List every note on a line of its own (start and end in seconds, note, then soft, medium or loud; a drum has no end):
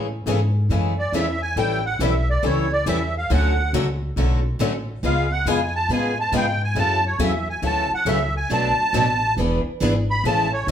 0.00 0.25 A2 medium
0.26 0.68 G#2 medium
0.26 0.38 C#3 medium
0.26 0.39 E3 medium
0.26 0.39 G#3 medium
0.26 0.39 A3 medium
0.26 0.39 C#4 medium
0.26 0.39 E4 medium
0.26 0.39 G#4 medium
0.26 0.39 A4 medium
0.69 1.12 F#2 medium
0.69 0.92 C#3 medium
0.69 0.92 E3 medium
0.69 0.92 G#3 medium
0.69 0.93 A3 medium
0.69 0.93 C#4 medium
0.69 0.92 E4 medium
0.69 0.93 G#4 medium
0.69 0.92 A4 medium
0.99 1.13 D5 medium
1.12 1.55 E2 medium
1.12 1.25 C#3 medium
1.12 1.25 E3 medium
1.12 1.26 G#3 medium
1.12 1.25 A3 medium
1.12 1.26 C#4 medium
1.12 1.26 E4 medium
1.12 1.26 G#4 medium
1.12 1.26 A4 medium
1.12 1.41 E5 medium
1.42 1.57 G#5 medium
1.56 1.99 A1 medium
1.56 1.78 E3 medium
1.56 1.79 G3 medium
1.56 1.79 C#4 medium
1.56 1.79 E4 medium
1.56 1.79 A4 medium
1.56 1.84 G5 medium
1.86 2.00 F#5 medium
1.99 2.42 B1 medium
1.99 2.12 E3 medium
1.99 2.12 G3 medium
1.99 2.12 C#4 medium
1.99 2.12 E4 medium
1.99 2.12 A4 loud
1.99 2.29 E5 medium
2.30 2.44 D5 medium
2.43 2.85 C#2 medium
2.43 2.65 E3 medium
2.43 2.65 G3 medium
2.43 2.65 C#4 medium
2.43 2.66 E4 medium
2.43 2.65 A4 medium
2.43 2.72 C#5 medium
2.72 2.87 D5 medium
2.86 3.28 E2 medium
2.86 2.98 E3 medium
2.86 2.98 G3 medium
2.86 2.98 C#4 medium
2.86 2.98 E4 loud
2.86 2.99 A4 medium
2.86 3.15 E5 medium
3.18 3.31 F5 medium
3.30 3.72 D2 medium
3.30 3.52 D3 medium
3.30 3.52 F#3 medium
3.30 3.52 A3 medium
3.30 3.52 C#4 medium
3.30 3.52 F#4 medium
3.30 3.52 A4 medium
3.30 3.72 F#5 medium
3.73 4.15 C#2 medium
3.73 3.85 D3 medium
3.73 3.85 F#3 loud
3.73 3.85 A3 medium
3.73 3.86 C#4 medium
3.73 3.85 F#4 medium
3.73 3.86 A4 medium
4.16 4.58 B1 medium
4.16 4.39 D3 medium
4.16 4.39 F#3 medium
4.16 4.39 A3 medium
4.16 4.39 C#4 medium
4.16 4.39 F#4 medium
4.16 4.39 A4 medium
4.59 5.02 A1 medium
4.59 4.72 D3 medium
4.59 4.72 F#3 medium
4.59 4.72 A3 medium
4.59 4.72 C#4 medium
4.59 4.72 F#4 medium
4.59 4.72 A4 medium
5.03 5.45 C#2 medium
5.03 5.25 C#3 medium
5.03 5.26 G#3 medium
5.03 5.26 B3 medium
5.03 5.26 F4 medium
5.03 5.26 G#4 medium
5.03 5.31 F5 medium
5.32 5.46 F#5 medium
5.46 5.88 F2 medium
5.46 5.58 C#3 medium
5.46 5.58 G#3 medium
5.46 5.59 B3 medium
5.46 5.59 F4 medium
5.46 5.59 G#4 loud
5.46 5.75 G#5 medium
5.75 5.90 A5 loud
5.89 6.31 A2 medium
5.89 6.12 C#3 medium
5.89 6.12 G#3 medium
5.89 6.12 B3 medium
5.89 6.13 F4 medium
5.89 6.13 G#4 medium
5.89 6.18 G#5 medium
6.20 6.34 A5 medium
6.32 6.74 G#2 medium
6.32 6.44 C#3 medium
6.32 6.45 G#3 medium
6.32 6.45 B3 medium
6.32 6.45 F4 medium
6.32 6.45 G#4 medium
6.36 6.62 G5 medium
6.64 6.78 G#5 medium
6.75 7.18 F#2 medium
6.75 6.98 C#3 medium
6.75 6.98 E3 medium
6.75 6.98 F#3 medium
6.75 6.98 A3 medium
6.75 6.98 C#4 medium
6.75 6.98 E4 medium
6.75 6.98 F#4 medium
6.75 6.98 A4 medium
6.75 7.05 A5 loud
7.06 7.20 C#5 medium
7.19 7.61 E2 medium
7.19 7.31 C#3 medium
7.19 7.31 E3 medium
7.19 7.31 F#3 medium
7.19 7.31 A3 medium
7.19 7.31 C#4 loud
7.19 7.32 E4 medium
7.19 7.31 F#4 medium
7.19 7.32 A4 medium
7.19 7.48 E5 medium
7.50 7.64 G#5 medium
7.62 7.89 D2 medium
7.62 7.85 C#3 medium
7.62 7.85 E3 medium
7.62 7.85 F#3 medium
7.62 7.85 A3 medium
7.62 7.85 C#4 medium
7.62 7.85 E4 medium
7.62 7.85 F#4 medium
7.62 7.85 A4 medium
7.66 7.92 A5 loud
7.91 8.08 F#5 medium
7.91 muted upright bass stroke soft
8.05 8.48 C#2 medium
8.05 8.18 C#3 medium
8.05 8.18 E3 medium
8.05 8.18 F#3 medium
8.05 8.18 A3 medium
8.05 8.18 C#4 medium
8.05 8.18 E4 medium
8.05 8.18 F#4 medium
8.05 8.18 A4 medium
8.05 8.35 E5 medium
8.37 8.51 G#5 medium
8.50 8.76 B1 medium
8.50 8.72 B2 medium
8.50 8.72 F#3 medium
8.50 8.72 A3 medium
8.50 8.73 D4 medium
8.50 8.73 F#4 medium
8.50 8.72 B4 medium
8.50 9.34 A5 loud
8.77 muted upright bass stroke soft
8.93 9.35 A1 medium
8.93 9.05 B2 medium
8.93 9.05 F#3 medium
8.93 9.06 A3 medium
8.93 9.05 D4 medium
8.93 9.06 F#4 medium
8.93 9.05 B4 medium
9.37 9.63 E1 medium
9.37 9.60 E3 medium
9.37 9.60 B3 medium
9.37 9.60 D4 medium
9.37 9.60 G#4 medium
9.37 9.59 B4 medium
9.65 muted upright bass stroke soft
9.81 10.23 G#1 medium
9.81 9.93 E3 medium
9.81 9.93 B3 medium
9.81 9.93 D4 medium
9.81 9.93 G#4 medium
9.81 9.92 B4 medium
10.10 10.24 B5 loud
10.24 10.66 A1 medium
10.24 10.46 C#3 medium
10.24 10.46 E3 medium
10.24 10.46 G#3 medium
10.24 10.47 A3 medium
10.24 10.47 C#4 medium
10.24 10.46 E4 medium
10.24 10.46 G#4 medium
10.24 10.47 A4 medium
10.24 10.52 A5 medium
10.54 10.68 C#5 medium
10.67 10.71 B1 medium